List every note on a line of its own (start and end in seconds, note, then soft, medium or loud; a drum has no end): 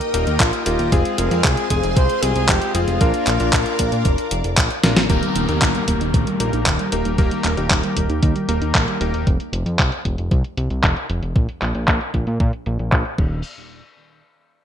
0.00 0.11 A#3 medium
0.00 0.11 D#4 medium
0.00 0.11 G4 medium
0.00 0.11 A#4 medium
0.00 0.88 A#4 medium
0.00 0.88 D#5 medium
0.00 0.88 G5 medium
0.00 0.88 D#6 loud
0.00 closed hi-hat soft
0.14 0.26 D#1 medium
0.14 0.63 A#3 medium
0.14 0.63 D#4 medium
0.14 0.63 G4 medium
0.14 0.63 A#4 medium
0.14 closed hi-hat medium
0.27 0.39 D#2 medium
0.27 closed hi-hat soft
0.40 0.52 A#1 loud
0.40 0.64 F4 medium
0.40 kick loud
0.40 clap loud
0.40 closed hi-hat medium
0.53 closed hi-hat soft
0.66 0.78 D#1 medium
0.66 0.89 A#3 medium
0.66 0.89 D#4 medium
0.66 1.20 F4 loud
0.66 0.89 G4 medium
0.66 0.89 A#4 medium
0.66 closed hi-hat medium
0.79 0.91 D#1 medium
0.79 closed hi-hat soft
0.92 1.04 F1 loud
0.92 1.28 G#3 medium
0.92 1.28 C4 medium
0.92 1.28 F4 medium
0.92 1.28 G#4 loud
0.92 2.99 G#4 medium
0.92 2.99 C5 medium
0.92 2.99 F5 medium
0.92 2.99 C6 medium
0.92 kick loud
0.92 closed hi-hat medium
1.05 closed hi-hat soft
1.18 1.30 F1 loud
1.18 1.46 A#4 loud
1.18 closed hi-hat loud
1.31 1.43 F2 medium
1.31 2.20 G#3 medium
1.31 2.20 C4 medium
1.31 2.20 F4 medium
1.31 2.20 G#4 medium
1.31 closed hi-hat soft
1.44 1.56 C2 loud
1.44 1.70 G#4 loud
1.44 kick loud
1.44 clap loud
1.44 closed hi-hat medium
1.57 closed hi-hat soft
1.70 1.82 F1 medium
1.70 1.98 G#4 loud
1.70 kick medium
1.70 closed hi-hat loud
1.83 1.95 F1 medium
1.83 closed hi-hat soft
1.96 2.08 C2 loud
1.96 2.24 C5 loud
1.96 kick loud
1.96 closed hi-hat medium
2.10 closed hi-hat soft
2.22 2.34 C2 medium
2.22 2.72 G#3 medium
2.22 2.72 C4 medium
2.22 2.72 F4 medium
2.22 2.50 G#4 loud
2.22 2.72 G#4 medium
2.22 closed hi-hat medium
2.36 2.47 C2 medium
2.36 closed hi-hat soft
2.48 2.60 F1 loud
2.48 2.76 G4 loud
2.48 kick loud
2.48 clap loud
2.48 closed hi-hat medium
2.62 closed hi-hat soft
2.74 2.86 F1 medium
2.74 2.98 G#3 medium
2.74 2.98 C4 medium
2.74 4.57 F4 loud
2.74 2.98 F4 medium
2.74 2.98 G#4 medium
2.74 closed hi-hat medium
2.88 2.99 F1 medium
2.88 closed hi-hat soft
3.01 3.12 A#1 loud
3.01 3.37 A#3 medium
3.01 3.37 D4 medium
3.01 3.37 F4 medium
3.01 5.07 A#4 medium
3.01 3.37 A#4 loud
3.01 5.08 D5 medium
3.01 5.08 F5 medium
3.01 5.07 D6 medium
3.01 kick loud
3.01 closed hi-hat medium
3.14 closed hi-hat soft
3.27 3.39 A#1 loud
3.27 clap medium
3.27 closed hi-hat loud
3.40 3.52 A#1 medium
3.40 4.29 A#3 medium
3.40 4.29 D4 medium
3.40 4.29 F4 medium
3.40 4.29 A#4 medium
3.40 closed hi-hat soft
3.53 3.65 A#1 loud
3.53 kick loud
3.53 clap loud
3.53 closed hi-hat medium
3.66 closed hi-hat soft
3.79 3.91 A#1 medium
3.79 kick medium
3.79 closed hi-hat loud
3.92 4.04 A#2 medium
3.92 closed hi-hat soft
4.05 4.17 F1 loud
4.05 kick loud
4.05 closed hi-hat medium
4.18 closed hi-hat soft
4.31 4.43 F1 medium
4.31 closed hi-hat loud
4.44 4.56 F1 medium
4.44 closed hi-hat soft
4.57 4.69 A#1 loud
4.57 kick loud
4.57 clap loud
4.57 closed hi-hat medium
4.70 closed hi-hat soft
4.83 4.95 A#1 medium
4.83 4.99 A#3 medium
4.83 4.99 D4 medium
4.83 4.99 F4 medium
4.83 4.99 A#4 loud
4.83 snare medium
4.83 closed hi-hat medium
4.97 5.08 A#1 medium
4.97 snare loud
4.97 closed hi-hat soft
5.10 5.21 D#1 loud
5.10 5.15 D#3 medium
5.10 5.46 A#3 medium
5.10 5.46 D#4 medium
5.10 5.46 G4 medium
5.10 5.46 A#4 medium
5.10 kick loud
5.10 closed hi-hat medium
5.10 downlifter medium
5.23 5.32 G3 medium
5.23 closed hi-hat soft
5.36 5.47 D#1 medium
5.36 5.41 A#3 loud
5.36 closed hi-hat medium
5.49 5.60 D#2 medium
5.49 6.37 A#3 medium
5.49 6.37 D#4 medium
5.49 5.61 D#4 medium
5.49 6.37 G4 medium
5.49 6.37 A#4 medium
5.49 closed hi-hat soft
5.62 5.73 A#1 loud
5.62 5.71 D#3 medium
5.62 kick loud
5.62 clap loud
5.62 closed hi-hat medium
5.75 5.84 G3 medium
5.75 closed hi-hat soft
5.88 5.99 D#1 medium
5.88 5.97 A#3 medium
5.88 kick medium
5.88 closed hi-hat loud
6.01 6.13 D#1 medium
6.01 6.07 D#4 medium
6.01 closed hi-hat soft
6.14 6.26 A#1 loud
6.14 6.20 D#3 medium
6.14 kick loud
6.14 closed hi-hat medium
6.27 6.36 G3 medium
6.27 closed hi-hat soft
6.40 6.52 A#1 medium
6.40 6.89 A#3 medium
6.40 6.46 A#3 loud
6.40 6.89 D#4 medium
6.40 6.89 G4 medium
6.40 6.89 A#4 medium
6.40 closed hi-hat medium
6.53 6.65 A#1 medium
6.53 6.66 D#4 medium
6.53 closed hi-hat soft
6.66 6.78 D#1 loud
6.66 6.76 D#3 medium
6.66 kick loud
6.66 clap loud
6.66 closed hi-hat medium
6.79 6.89 G3 medium
6.79 closed hi-hat soft
6.92 7.04 D#1 medium
6.92 7.02 A#3 medium
6.92 7.15 A#3 medium
6.92 7.15 D#4 medium
6.92 7.15 G4 medium
6.92 7.15 A#4 medium
6.92 closed hi-hat medium
7.05 7.17 D#1 medium
7.05 7.11 D#4 medium
7.05 closed hi-hat soft
7.18 7.30 D#1 loud
7.18 7.24 D#3 medium
7.18 7.54 A#3 medium
7.18 7.54 D#4 medium
7.18 7.54 G4 medium
7.18 7.54 A#4 medium
7.18 kick loud
7.18 closed hi-hat medium
7.31 7.41 G3 medium
7.31 closed hi-hat soft
7.44 7.56 D#1 medium
7.44 7.50 A#3 loud
7.44 clap medium
7.44 closed hi-hat medium
7.57 7.69 D#1 medium
7.57 8.46 A#3 medium
7.57 8.46 D#4 medium
7.57 7.70 D#4 medium
7.57 8.46 G4 medium
7.57 8.46 A#4 medium
7.57 closed hi-hat soft
7.70 7.82 D#1 loud
7.70 7.80 D#3 medium
7.70 kick loud
7.70 clap loud
7.70 closed hi-hat medium
7.83 7.93 G3 medium
7.83 closed hi-hat soft
7.97 8.08 D#1 medium
7.97 8.06 A#3 medium
7.97 kick medium
7.97 closed hi-hat medium
8.09 8.21 D#2 medium
8.09 8.15 D#4 medium
8.09 closed hi-hat soft
8.23 8.34 D#2 loud
8.23 8.28 D#3 medium
8.23 kick loud
8.23 closed hi-hat medium
8.36 8.45 G3 medium
8.36 closed hi-hat soft
8.49 8.60 D#1 medium
8.49 8.98 A#3 medium
8.49 8.54 A#3 loud
8.49 8.98 D#4 medium
8.49 8.98 G4 medium
8.49 8.98 A#4 medium
8.49 closed hi-hat medium
8.62 8.73 D#2 medium
8.62 8.74 D#4 medium
8.62 closed hi-hat soft
8.75 8.86 A#1 loud
8.75 8.84 D#3 medium
8.75 kick loud
8.75 clap loud
8.75 closed hi-hat medium
8.88 8.97 G3 medium
8.88 closed hi-hat soft
9.01 9.12 D#1 medium
9.01 9.24 A#3 medium
9.01 9.10 A#3 medium
9.01 9.24 D#4 medium
9.01 9.24 G4 medium
9.01 9.24 A#4 medium
9.01 closed hi-hat medium
9.14 9.25 D#1 medium
9.14 9.20 D#4 medium
9.14 closed hi-hat soft
9.27 9.39 F1 loud
9.27 kick loud
9.27 closed hi-hat medium
9.40 closed hi-hat soft
9.53 9.64 F1 medium
9.53 closed hi-hat medium
9.66 9.78 F2 medium
9.66 closed hi-hat soft
9.79 9.91 C2 loud
9.79 kick loud
9.79 clap loud
9.79 closed hi-hat medium
9.92 closed hi-hat soft
10.05 10.17 F1 medium
10.05 kick medium
10.05 closed hi-hat medium
10.18 10.30 F1 medium
10.18 closed hi-hat soft
10.31 10.43 C2 loud
10.31 kick loud
10.31 closed hi-hat medium
10.44 closed hi-hat soft
10.57 10.69 C2 medium
10.57 closed hi-hat medium
10.70 10.82 C2 medium
10.70 closed hi-hat soft
10.83 10.95 F1 loud
10.83 kick loud
10.83 clap loud
10.83 closed hi-hat medium
10.97 closed hi-hat soft
11.10 11.21 F1 medium
11.10 closed hi-hat medium
11.23 11.34 F1 medium
11.23 closed hi-hat soft
11.36 11.47 A#1 loud
11.36 kick loud
11.36 closed hi-hat medium
11.49 closed hi-hat soft
11.62 11.73 A#1 loud
11.62 clap medium
11.62 closed hi-hat medium
11.75 11.86 A#1 medium
11.75 closed hi-hat soft
11.88 11.99 A#1 loud
11.88 kick loud
11.88 clap loud
11.88 closed hi-hat medium
12.01 closed hi-hat soft
12.14 12.26 A#1 medium
12.14 kick medium
12.14 closed hi-hat medium
12.27 12.39 A#2 medium
12.27 closed hi-hat soft
12.40 12.52 A#2 loud
12.40 kick loud
12.40 closed hi-hat medium
12.53 closed hi-hat soft
12.66 12.78 A#1 medium
12.66 closed hi-hat medium
12.79 12.91 A#1 medium
12.79 closed hi-hat soft
12.92 13.04 A#1 loud
12.92 kick loud
12.92 clap loud
12.92 closed hi-hat medium
13.05 closed hi-hat soft
13.18 13.43 D#1 medium
13.18 kick loud
13.18 crash medium